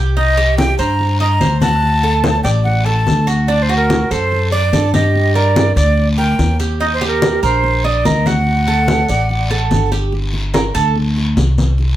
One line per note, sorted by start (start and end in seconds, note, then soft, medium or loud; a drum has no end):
0.00 0.73 C2 medium
0.00 0.16 G4 medium
0.17 0.37 D#4 medium
0.17 0.56 D#5 loud
0.17 high conga soft
0.17 long guiro medium
0.37 0.78 G4 medium
0.37 high conga soft
0.58 0.77 G5 loud
0.58 high conga medium
0.58 short guiro medium
0.79 1.37 G2 medium
0.79 1.19 C5 medium
0.79 1.17 A#5 loud
0.79 short guiro medium
0.99 high conga soft
0.99 long guiro medium
1.20 1.40 D#5 medium
1.20 1.59 A#5 loud
1.20 high conga soft
1.41 2.39 D2 medium
1.41 1.61 C5 medium
1.41 high conga medium
1.41 short guiro medium
1.61 2.02 F#4 medium
1.61 2.41 A5 loud
1.61 high conga medium
1.61 short guiro medium
1.82 high conga soft
1.82 long guiro medium
2.03 2.44 A4 medium
2.03 high conga soft
2.24 high conga medium
2.24 short guiro medium
2.43 3.03 A1 medium
2.43 2.85 D5 medium
2.43 2.49 G5 medium
2.43 high conga soft
2.43 short guiro medium
2.64 2.86 F#5 medium
2.64 high conga soft
2.64 long guiro medium
2.85 3.27 A4 medium
2.85 3.27 A5 loud
2.85 high conga soft
3.07 4.05 D2 medium
3.07 high conga medium
3.07 short guiro medium
3.27 3.48 F#4 medium
3.27 high conga soft
3.27 short guiro medium
3.48 3.69 D4 medium
3.48 3.64 D5 medium
3.48 high conga soft
3.48 long guiro medium
3.62 3.76 C5 medium
3.69 4.10 F#4 medium
3.69 high conga soft
3.77 4.12 A#4 medium
3.90 high conga medium
3.90 short guiro medium
4.11 4.69 F#2 medium
4.11 4.52 A4 medium
4.11 4.51 C5 medium
4.11 short guiro medium
4.32 high conga soft
4.32 long guiro medium
4.51 4.91 D5 medium
4.51 4.73 D5 medium
4.51 high conga soft
4.73 5.71 G2 medium
4.73 4.93 A4 medium
4.73 high conga medium
4.73 short guiro medium
4.94 5.34 G4 medium
4.94 5.36 D#5 medium
4.94 high conga medium
4.94 short guiro medium
5.15 high conga soft
5.15 long guiro medium
5.35 5.76 A#4 medium
5.35 5.75 D5 medium
5.35 high conga soft
5.56 high conga medium
5.56 short guiro medium
5.76 6.35 D2 loud
5.76 6.09 D5 medium
5.76 6.17 D5 medium
5.76 high conga soft
5.76 short guiro medium
5.97 high conga soft
5.97 long guiro medium
6.18 6.59 A#4 medium
6.18 6.57 G5 medium
6.18 high conga soft
6.39 7.37 D#2 medium
6.39 high conga medium
6.39 short guiro medium
6.59 6.80 G4 medium
6.59 high conga soft
6.59 short guiro medium
6.80 7.01 D#4 medium
6.80 6.86 D#5 medium
6.80 high conga soft
6.80 long guiro medium
6.93 7.07 C5 medium
7.01 7.42 G4 medium
7.01 high conga soft
7.07 7.40 A#4 medium
7.22 high conga medium
7.22 short guiro medium
7.43 8.02 A#1 medium
7.43 7.83 A#4 medium
7.43 7.86 C5 medium
7.43 short guiro medium
7.63 high conga soft
7.63 long guiro medium
7.84 8.08 D5 medium
7.84 8.05 D#5 medium
7.84 high conga soft
8.05 9.03 D2 medium
8.05 8.26 A#4 medium
8.05 8.28 D#5 medium
8.05 high conga medium
8.05 short guiro medium
8.26 8.67 F#4 medium
8.26 9.93 F#5 loud
8.26 high conga medium
8.26 short guiro medium
8.47 high conga soft
8.47 long guiro medium
8.67 9.08 A4 medium
8.67 high conga soft
8.88 high conga medium
8.88 short guiro medium
9.09 9.68 A1 medium
9.09 9.50 D5 medium
9.09 high conga soft
9.09 short guiro medium
9.29 high conga soft
9.29 long guiro medium
9.51 9.91 A4 medium
9.51 high conga soft
9.71 10.69 G1 medium
9.71 high conga medium
9.71 short guiro medium
9.92 10.12 G4 medium
9.92 high conga soft
9.92 short guiro medium
10.12 high conga soft
10.12 long guiro medium
10.33 high conga soft
10.54 10.74 A#4 medium
10.54 high conga medium
10.54 short guiro medium
10.75 11.33 D2 medium
10.75 10.95 A4 medium
10.75 short guiro medium
10.96 high conga soft
10.96 long guiro medium
11.17 high conga soft
11.37 11.96 C2 medium
11.37 high conga medium
11.37 short guiro medium
11.58 high conga medium
11.58 short guiro medium
11.78 high conga soft
11.78 long guiro medium